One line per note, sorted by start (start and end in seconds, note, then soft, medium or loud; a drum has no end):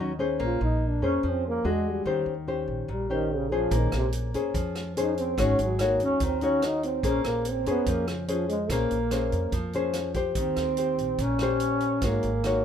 0.00 0.36 D#2 medium
0.00 0.39 D#3 medium
0.00 0.12 F#3 medium
0.00 0.12 C#4 medium
0.00 0.12 D#4 medium
0.19 0.58 C#4 medium
0.19 0.58 G#4 medium
0.19 0.58 C5 medium
0.40 0.60 A#1 loud
0.40 1.21 A#3 medium
0.46 0.63 F4 medium
0.61 1.00 A#1 medium
0.61 0.90 D#4 medium
0.88 1.04 D4 medium
1.02 1.22 F2 medium
1.02 1.61 C#4 medium
1.02 1.31 C#4 medium
1.02 1.62 G#4 medium
1.02 1.62 C5 medium
1.23 1.62 F2 medium
1.23 1.63 F3 medium
1.30 1.47 C4 medium
1.47 1.72 A#3 medium
1.65 2.03 E2 medium
1.65 2.03 G#3 medium
1.65 2.03 D4 medium
1.65 2.03 F#4 medium
1.70 1.88 G#3 medium
1.89 2.26 G3 medium
2.06 2.25 D#2 medium
2.06 2.87 D#3 medium
2.06 2.33 C#4 soft
2.06 2.33 G4 soft
2.06 2.33 C5 medium
2.26 2.65 D#2 medium
2.48 2.89 C#4 medium
2.48 2.89 G4 medium
2.48 2.89 C5 medium
2.68 2.87 A#1 medium
2.88 3.68 A#1 medium
2.88 3.70 A#2 medium
2.93 3.14 G3 medium
3.10 3.37 D#3 medium
3.10 3.48 C#4 medium
3.10 3.48 G4 medium
3.10 3.49 C5 medium
3.36 3.55 C#3 medium
3.52 3.79 F3 medium
3.52 4.31 C#4 medium
3.52 4.31 G#4 medium
3.52 4.32 C5 medium
3.71 3.91 A#1 loud
3.71 4.53 A#3 medium
3.71 kick medium
3.71 closed hi-hat soft
3.77 3.95 D#3 medium
3.92 4.32 A#1 medium
3.92 cross-stick medium
3.92 closed hi-hat soft
3.97 4.08 C3 medium
4.12 closed hi-hat soft
4.34 4.93 C#4 medium
4.34 4.94 G#4 medium
4.34 4.94 C5 medium
4.34 closed hi-hat soft
4.54 5.34 F2 medium
4.54 5.36 F3 medium
4.54 kick medium
4.54 closed hi-hat soft
4.75 cross-stick medium
4.75 closed hi-hat soft
4.97 5.35 C#4 medium
4.97 5.35 G#4 medium
4.97 5.35 C5 medium
4.97 closed hi-hat soft
5.02 5.18 D#4 medium
5.18 5.45 C4 medium
5.18 closed hi-hat soft
5.37 5.57 G#1 loud
5.37 6.19 G#3 medium
5.37 5.65 D#4 medium
5.37 5.65 F#4 medium
5.37 5.65 C#5 medium
5.37 kick medium
5.37 cross-stick medium
5.37 closed hi-hat soft
5.43 5.61 C#4 medium
5.59 5.97 G#1 medium
5.59 closed hi-hat soft
5.63 5.86 F#3 medium
5.79 6.39 D#4 medium
5.79 6.39 F#4 medium
5.79 6.39 C#5 medium
5.79 cross-stick medium
5.79 closed hi-hat soft
5.85 6.02 A#3 medium
6.00 6.19 D#2 medium
6.00 6.26 C#4 loud
6.00 closed hi-hat soft
6.20 7.00 D#2 medium
6.20 7.03 D#3 medium
6.20 kick medium
6.20 closed hi-hat soft
6.25 6.44 C4 medium
6.41 6.67 C#4 medium
6.41 7.01 D#4 medium
6.41 7.01 F#4 medium
6.41 7.01 C#5 medium
6.41 closed hi-hat soft
6.62 6.84 D#4 medium
6.62 cross-stick medium
6.62 closed hi-hat soft
6.83 7.08 C4 medium
6.83 closed hi-hat soft
7.03 7.23 A#1 medium
7.03 7.85 A#3 medium
7.03 7.63 C#4 medium
7.03 7.24 C#4 medium
7.03 7.63 G#4 medium
7.03 7.63 C5 medium
7.03 kick medium
7.03 closed hi-hat soft
7.24 7.63 A#1 medium
7.24 7.51 A#3 medium
7.24 cross-stick medium
7.24 closed hi-hat soft
7.45 closed hi-hat soft
7.50 7.68 C4 medium
7.66 7.86 F2 medium
7.66 7.92 B3 medium
7.66 8.25 C#4 medium
7.66 8.26 G#4 medium
7.66 8.26 C5 medium
7.66 closed hi-hat soft
7.86 8.66 F2 medium
7.86 8.68 F3 medium
7.86 kick medium
7.86 closed hi-hat soft
7.91 8.08 A#3 medium
8.08 8.25 C#3 soft
8.08 cross-stick medium
8.08 closed hi-hat soft
8.28 8.48 F3 medium
8.28 8.55 C#4 medium
8.28 8.55 G#4 medium
8.28 8.56 C5 medium
8.28 closed hi-hat soft
8.49 8.72 G#3 medium
8.49 closed hi-hat soft
8.70 8.89 A#1 medium
8.70 9.95 A#3 medium
8.70 9.52 A#3 medium
8.70 8.97 C#4 medium
8.70 8.97 G#4 soft
8.70 8.98 C5 medium
8.70 kick medium
8.70 cross-stick medium
8.70 closed hi-hat soft
8.91 9.30 A#1 medium
8.91 closed hi-hat soft
9.11 9.53 C#4 medium
9.11 9.53 G#4 medium
9.11 9.53 C5 medium
9.11 cross-stick medium
9.11 closed hi-hat soft
9.32 9.52 F2 medium
9.32 closed hi-hat soft
9.52 10.32 F2 medium
9.52 10.34 F3 medium
9.52 kick medium
9.52 closed hi-hat soft
9.73 10.12 C#4 medium
9.73 10.13 G#4 medium
9.73 10.13 C5 medium
9.73 closed hi-hat soft
9.93 cross-stick medium
9.93 closed hi-hat soft
10.14 10.76 G4 medium
10.14 10.77 C5 medium
10.14 kick medium
10.14 closed hi-hat soft
10.35 10.55 D#2 medium
10.35 11.17 D#3 medium
10.35 kick medium
10.35 closed hi-hat soft
10.40 11.24 C4 medium
10.56 10.95 D#2 medium
10.56 cross-stick medium
10.56 closed hi-hat soft
10.77 11.19 G4 medium
10.77 11.20 C5 medium
10.77 closed hi-hat soft
10.98 11.18 A#1 medium
10.98 closed hi-hat soft
11.18 11.98 A#1 medium
11.18 12.01 A#2 medium
11.18 12.07 C#4 loud
11.18 kick medium
11.18 closed hi-hat soft
11.39 12.00 C#4 medium
11.39 12.00 G4 medium
11.39 cross-stick medium
11.39 closed hi-hat soft
11.43 12.01 C5 medium
11.60 closed hi-hat soft
11.80 closed hi-hat soft
12.02 12.22 G#1 loud
12.02 12.65 G#3 medium
12.02 12.65 A#3 medium
12.02 12.30 D#4 soft
12.02 12.30 F#4 soft
12.02 12.30 C#5 medium
12.02 kick medium
12.02 cross-stick medium
12.02 closed hi-hat soft
12.23 12.62 G#1 medium
12.23 closed hi-hat soft
12.44 12.65 D#4 medium
12.44 12.65 F#4 soft
12.44 12.65 C#5 medium
12.44 cross-stick medium
12.44 closed hi-hat soft